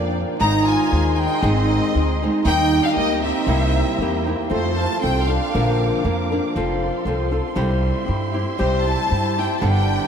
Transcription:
0.00 0.22 F2 medium
0.00 0.39 F3 soft
0.00 0.15 A#3 medium
0.00 0.40 A#3 soft
0.00 0.40 D4 soft
0.00 0.40 A#4 medium
0.00 0.15 D5 medium
0.40 0.74 G#1 medium
0.40 0.92 G#2 medium
0.40 1.43 D#3 medium
0.40 0.91 G#3 medium
0.40 0.92 C4 medium
0.40 0.67 D#4 medium
0.40 0.92 D#4 medium
0.40 2.43 G#4 medium
0.40 0.92 G#4 medium
0.40 3.44 D#5 medium
0.40 0.66 A#5 loud
0.40 2.43 C6 medium
0.66 1.12 F4 medium
0.66 1.12 G#5 medium
0.92 1.26 D#2 medium
0.92 1.42 G#3 medium
0.92 1.42 C4 soft
0.92 1.43 D#4 medium
0.92 1.42 G#4 soft
1.13 1.43 D#4 medium
1.13 1.19 F4 soft
1.13 1.20 G#5 medium
1.18 1.43 G5 medium
1.42 1.76 G#1 loud
1.42 1.94 G#2 medium
1.42 1.95 D#3 medium
1.42 1.94 G#3 medium
1.42 2.20 C4 medium
1.42 1.95 C4 medium
1.42 1.95 D#4 loud
1.42 1.95 G#4 medium
1.42 2.20 D#5 medium
1.95 2.28 D2 medium
1.95 2.21 G#3 medium
1.95 2.22 C4 soft
1.95 2.22 D#4 medium
1.95 2.21 G#4 medium
2.23 2.46 G#3 medium
2.23 2.46 C4 soft
2.23 2.46 D#4 medium
2.23 2.46 G#4 medium
2.44 2.78 D#2 loud
2.44 2.96 D#3 medium
2.44 2.95 G3 medium
2.44 2.96 A#3 medium
2.44 2.84 D#4 medium
2.44 2.96 D#4 medium
2.44 3.46 G4 medium
2.44 2.96 G4 medium
2.44 2.81 G5 loud
2.44 4.48 A#5 medium
2.82 2.92 D4 medium
2.82 2.96 F5 loud
2.92 3.22 G3 soft
2.92 3.18 A#3 medium
2.92 3.20 D#5 medium
2.97 3.30 D2 medium
2.97 3.23 A#3 soft
2.97 3.23 D#4 medium
2.97 3.23 G4 medium
3.19 4.20 C4 medium
3.19 4.21 E5 medium
3.24 3.47 A#3 soft
3.24 3.48 D#4 soft
3.24 3.48 G4 medium
3.47 3.80 C2 loud
3.47 3.99 C3 medium
3.47 3.99 G3 medium
3.47 4.00 A#3 medium
3.47 4.49 E4 medium
3.47 4.00 E4 medium
3.47 4.00 G4 medium
3.47 4.50 C5 medium
3.99 4.32 E2 medium
3.99 4.26 G3 soft
3.99 4.27 A#3 medium
3.99 4.27 E4 medium
3.99 4.26 G4 medium
4.27 4.49 A#3 soft
4.27 4.50 E4 soft
4.27 4.51 G4 medium
4.49 4.85 F2 medium
4.49 5.01 F3 medium
4.49 4.78 A3 medium
4.49 5.02 C4 medium
4.49 5.03 F4 medium
4.49 5.52 A4 medium
4.49 5.02 A4 medium
4.49 4.76 C5 medium
4.49 7.53 F5 medium
4.49 5.52 C6 medium
4.76 4.99 F4 medium
4.76 5.03 A5 medium
5.00 5.37 C2 medium
5.00 5.29 F3 soft
5.00 5.29 C4 medium
5.00 5.29 C4 soft
5.00 5.29 F4 soft
5.00 5.27 A4 soft
5.00 5.27 G5 medium
5.27 5.54 C4 soft
5.27 6.04 D4 medium
5.27 5.54 F4 soft
5.27 5.54 A4 soft
5.27 6.04 F5 medium
5.54 5.88 A#1 loud
5.54 6.05 A#2 medium
5.54 6.05 D3 medium
5.54 6.03 F3 medium
5.54 6.04 A#3 medium
5.54 6.04 D4 medium
5.54 6.54 A#4 medium
5.54 6.05 A#4 medium
5.54 6.54 D6 medium
6.04 6.38 F2 medium
6.04 6.31 F3 medium
6.04 6.31 A#3 medium
6.04 6.31 D4 medium
6.04 6.31 A#4 medium
6.32 6.55 F3 soft
6.32 6.56 A#3 soft
6.32 6.56 D4 medium
6.32 6.56 A#4 medium
6.56 6.88 F1 medium
6.56 7.05 F3 medium
6.56 7.06 C4 medium
6.56 7.06 F4 medium
6.56 7.56 A4 medium
6.56 7.07 A4 medium
6.56 9.60 C6 medium
7.05 7.38 C2 medium
7.05 7.32 F3 medium
7.05 7.32 C4 medium
7.05 7.31 F4 medium
7.05 7.30 A4 medium
7.32 7.55 C4 soft
7.32 7.57 F4 soft
7.32 7.56 A4 medium
7.55 7.89 C2 loud
7.55 8.07 C3 medium
7.55 8.06 G3 medium
7.55 8.06 C4 medium
7.55 8.07 E4 medium
7.55 10.07 G4 medium
7.55 8.08 G4 loud
7.55 9.60 E5 medium
8.06 8.42 G2 medium
8.06 8.34 G3 medium
8.06 8.34 C4 medium
8.06 8.33 E4 medium
8.06 8.33 G4 medium
8.34 8.58 C4 soft
8.34 8.58 E4 soft
8.34 8.58 G4 soft
8.58 8.94 C2 medium
8.58 9.11 C3 medium
8.58 9.08 G3 medium
8.58 8.89 G3 medium
8.58 9.10 C4 medium
8.58 9.10 E4 medium
8.58 9.10 G4 medium
8.58 8.84 C5 medium
8.84 9.38 E4 medium
8.84 9.36 A5 medium
9.09 9.45 G2 medium
9.09 9.36 G3 soft
9.09 9.37 C4 medium
9.09 9.37 E4 medium
9.09 9.37 G4 soft
9.38 9.62 C4 soft
9.38 9.56 E4 medium
9.38 9.62 E4 soft
9.38 9.61 G4 medium
9.38 9.56 G5 medium
9.56 9.66 F4 soft
9.56 9.62 A5 medium
9.61 9.95 G1 loud
9.61 10.07 G2 medium
9.61 10.07 D3 medium
9.61 10.07 G3 medium
9.61 10.07 B3 medium
9.61 10.07 D4 medium
9.61 10.07 G4 medium
9.61 10.07 D5 soft
9.61 10.07 G5 medium
9.61 10.07 B5 medium

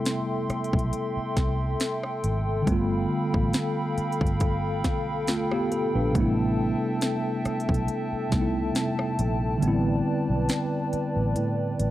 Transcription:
0.00 2.61 C3 medium
0.00 2.62 G3 medium
0.00 2.63 A3 medium
0.00 2.65 B3 medium
0.00 2.66 E4 medium
0.00 9.59 A4 medium
0.00 2.64 E5 medium
0.00 11.91 G5 medium
0.00 2.64 C6 loud
0.05 snare loud
0.05 closed hi-hat medium
0.50 muted fingered electric bass stroke soft
0.50 cross-stick medium
0.50 closed hi-hat soft
0.64 closed hi-hat soft
0.73 0.91 B1 medium
0.73 kick loud
0.79 closed hi-hat soft
0.93 closed hi-hat medium
1.17 muted fingered electric bass stroke soft
1.37 1.74 C2 medium
1.37 kick medium
1.37 snare medium
1.37 closed hi-hat medium
1.80 snare loud
1.80 closed hi-hat medium
2.03 cross-stick medium
2.24 2.61 G#1 medium
2.24 closed hi-hat medium
2.62 6.08 D3 medium
2.62 6.10 G3 medium
2.67 3.05 G1 loud
2.67 5.24 A3 medium
2.67 5.25 B3 medium
2.67 6.12 F5 medium
2.67 6.11 B5 medium
2.67 kick loud
2.67 closed hi-hat medium
2.72 5.26 F4 medium
3.34 3.51 A1 medium
3.34 kick medium
3.53 snare loud
3.53 closed hi-hat medium
3.98 muted fingered electric bass stroke medium
3.98 closed hi-hat soft
4.12 closed hi-hat soft
4.21 4.85 G1 medium
4.21 kick loud
4.26 closed hi-hat soft
4.40 kick medium
4.40 closed hi-hat medium
4.84 5.28 B1 medium
4.84 kick medium
4.84 snare medium
4.84 closed hi-hat medium
5.27 5.66 D2 loud
5.27 5.51 A3 medium
5.27 5.51 F4 medium
5.27 snare loud
5.27 closed hi-hat medium
5.51 5.71 B3 medium
5.51 5.71 G4 medium
5.51 cross-stick medium
5.72 5.94 A4 medium
5.72 closed hi-hat medium
5.95 6.12 A#1 medium
5.95 6.37 D4 medium
5.95 6.36 B4 medium
6.10 8.26 C3 medium
6.10 8.27 G3 medium
6.15 6.73 A1 loud
6.15 8.28 A3 medium
6.15 8.30 B3 medium
6.15 9.59 E5 medium
6.15 11.91 A5 medium
6.15 kick loud
6.15 closed hi-hat medium
6.20 8.31 E4 medium
7.01 snare loud
7.01 closed hi-hat medium
7.45 muted fingered electric bass stroke soft
7.45 cross-stick medium
7.45 closed hi-hat soft
7.60 closed hi-hat soft
7.69 7.86 B1 medium
7.69 kick loud
7.74 closed hi-hat soft
7.88 closed hi-hat medium
8.13 muted fingered electric bass stroke soft
8.30 8.70 C2 medium
8.30 9.62 C3 medium
8.30 9.59 G3 medium
8.30 9.63 A3 medium
8.30 9.62 B3 medium
8.30 kick medium
8.30 snare medium
8.30 closed hi-hat medium
8.35 8.41 D#4 medium
8.41 9.67 E4 medium
8.75 snare loud
8.75 closed hi-hat medium
8.99 cross-stick medium
9.19 9.57 A#1 medium
9.19 closed hi-hat medium
9.58 11.91 D3 medium
9.58 11.91 G3 medium
9.62 10.00 A1 loud
9.62 11.91 B3 medium
9.62 11.91 C4 medium
9.62 11.91 B4 medium
9.62 11.91 D5 medium
9.62 closed hi-hat medium
9.68 11.91 E4 medium
10.30 10.47 B1 medium
10.49 snare loud
10.49 closed hi-hat medium
10.93 muted fingered electric bass stroke soft
10.93 closed hi-hat medium
11.16 11.34 A1 medium
11.36 11.74 A2 loud
11.36 closed hi-hat medium
11.80 11.91 A1 medium
11.80 closed hi-hat medium

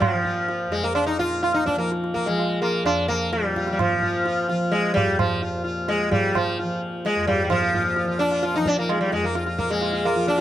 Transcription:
0.00 0.66 F2 medium
0.00 1.19 A#2 medium
0.00 0.11 F3 medium
0.00 0.74 F3 medium
0.00 tabla na loud
0.00 tabla ge medium
0.11 1.76 F3 medium
0.24 0.47 F4 soft
0.24 tabla ge medium
0.48 0.71 F4 soft
0.48 tabla te medium
0.67 2.83 F2 medium
0.72 0.85 G#3 medium
0.72 tabla te medium
0.83 0.95 A#3 medium
0.95 1.06 D4 medium
0.95 tabla na medium
1.06 1.19 D#4 medium
1.19 3.39 A#2 medium
1.19 1.41 F4 loud
1.19 tabla ke medium
1.43 1.54 F4 medium
1.43 tabla na medium
1.54 1.66 D#4 medium
1.66 1.78 D4 medium
1.66 tabla ke medium
1.76 2.29 F3 medium
1.76 1.90 A#3 medium
1.76 tabla te medium
1.92 tabla te medium
2.04 tabla te medium
2.14 2.26 A#3 medium
2.14 tabla ke medium
2.26 3.94 F3 medium
2.26 2.61 G#3 medium
2.26 tabla te medium
2.39 tabla tin medium
2.62 2.85 A#3 medium
2.62 tabla na medium
2.83 5.04 F2 medium
2.83 3.07 D4 medium
2.83 tabla na medium
3.08 3.30 A#3 loud
3.08 tabla ke medium
3.33 3.71 G3 medium
3.33 tabla te medium
3.40 5.55 A#2 medium
3.44 tabla te medium
3.56 3.78 F4 soft
3.56 tabla ke medium
3.67 tabla te medium
3.72 3.79 G3 medium
3.79 4.46 F3 medium
3.79 tabla na loud
3.79 tabla ge medium
3.94 4.50 F3 medium
4.02 4.24 F4 soft
4.02 tabla ge medium
4.26 4.47 F4 soft
4.26 tabla te medium
4.48 6.09 F3 medium
4.48 4.70 F4 soft
4.48 tabla te medium
4.72 4.93 G#3 medium
4.72 tabla te medium
4.94 5.16 G3 loud
4.94 tabla tin medium
4.94 tabla ge medium
5.04 7.15 F2 medium
5.19 5.40 F3 medium
5.19 tabla na medium
5.19 tabla ge medium
5.42 5.63 F4 soft
5.55 7.48 A#2 medium
5.64 5.86 F4 soft
5.88 6.11 G#3 medium
5.88 tabla te medium
6.09 6.62 F3 medium
6.09 6.35 G3 medium
6.09 tabla tin medium
6.09 tabla ge medium
6.35 6.57 F3 medium
6.35 tabla na medium
6.35 tabla ge medium
6.59 8.04 F3 medium
6.59 6.80 F4 soft
7.05 7.27 G#3 loud
7.05 tabla te medium
7.16 9.11 F2 medium
7.27 7.43 G3 loud
7.27 tabla tin medium
7.27 tabla ge medium
7.44 7.50 G3 medium
7.49 9.62 A#2 medium
7.49 8.16 F3 medium
7.49 7.61 F4 soft
7.49 tabla na loud
7.49 tabla ge medium
7.62 7.73 F4 soft
7.73 7.83 F4 soft
7.73 tabla ge medium
7.84 7.95 F4 soft
7.96 8.06 F4 soft
7.96 tabla te medium
8.04 8.59 F3 medium
8.04 8.29 F4 soft
8.19 8.43 D4 loud
8.19 tabla te medium
8.31 8.42 F4 soft
8.43 8.55 F4 loud
8.43 tabla te medium
8.54 8.67 D#4 loud
8.54 tabla te medium
8.59 10.15 F3 medium
8.66 8.78 D4 loud
8.66 tabla ke medium
8.77 8.90 A#3 medium
8.77 tabla te medium
8.89 9.00 G#3 medium
8.89 tabla na medium
9.01 9.12 G3 medium
9.11 10.41 F2 medium
9.11 9.24 G#3 medium
9.11 tabla te medium
9.24 9.34 A#3 medium
9.35 9.45 F4 soft
9.35 tabla te medium
9.46 9.67 F4 soft
9.46 tabla te medium
9.58 9.70 A#3 medium
9.58 tabla ke medium
9.63 10.41 A#2 medium
9.70 10.05 G#3 medium
9.70 tabla te medium
9.81 9.91 F4 soft
9.81 tabla tin medium
9.93 10.14 F4 soft
10.05 10.28 A#3 medium
10.05 tabla na medium
10.15 10.41 F3 medium
10.15 10.37 F4 soft
10.28 10.41 D4 loud
10.28 tabla te medium

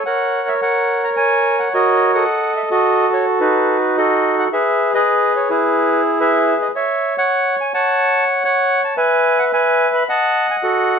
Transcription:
0.06 0.61 A#4 medium
0.06 0.61 C#5 medium
0.06 0.49 F#5 medium
0.48 0.54 E5 medium
0.62 1.68 A#4 medium
0.62 1.15 C#5 medium
0.62 1.04 F#5 medium
1.04 1.10 A#5 medium
1.17 2.24 C#5 medium
1.17 1.59 G#5 loud
1.59 1.73 F#5 medium
1.74 2.25 F#4 medium
1.74 2.25 A#4 medium
1.74 2.12 D#5 medium
2.14 2.69 A4 medium
2.14 2.70 D#5 medium
2.14 2.53 F#5 medium
2.56 2.62 E5 medium
2.71 3.39 F#4 medium
2.71 3.77 A4 medium
2.71 3.09 D#5 medium
3.13 3.25 C#5 medium
3.40 4.47 D#4 medium
3.40 3.96 F#4 medium
3.40 3.97 B4 medium
3.97 4.48 F#4 medium
3.97 4.49 A4 medium
3.97 4.35 D#5 medium
4.39 4.45 F#5 medium
4.53 4.94 G#4 medium
4.53 4.93 B4 medium
4.53 4.91 E5 medium
4.94 5.48 G#4 medium
4.94 5.49 B4 medium
4.94 5.33 D#5 medium
5.36 5.50 C#5 medium
5.50 6.57 E4 medium
5.50 6.19 G#4 medium
5.50 6.01 B4 medium
6.20 6.71 G#4 medium
6.20 6.71 B4 medium
6.20 6.58 E5 medium
6.62 6.68 D#5 medium
6.75 7.16 C#5 medium
6.75 7.14 E5 medium
7.18 7.72 C#5 medium
7.18 7.56 F#5 loud
7.61 7.72 G#5 medium
7.74 8.43 C#5 medium
7.74 8.44 F#5 medium
7.74 8.24 A5 medium
8.44 8.94 C#5 medium
8.44 8.82 F#5 loud
8.85 8.96 A5 medium
8.97 9.52 B4 medium
8.97 9.51 E5 medium
8.97 9.39 G#5 medium
9.39 9.45 F#5 medium
9.53 10.03 B4 medium
9.53 10.03 E5 medium
9.53 9.91 G#5 medium
9.95 10.08 B5 medium
10.09 10.63 D#5 medium
10.09 10.99 F#5 medium
10.09 10.47 A5 loud
10.50 10.56 G#5 medium
10.63 10.99 F#4 medium
10.63 10.99 A4 medium
10.63 10.99 D#5 medium

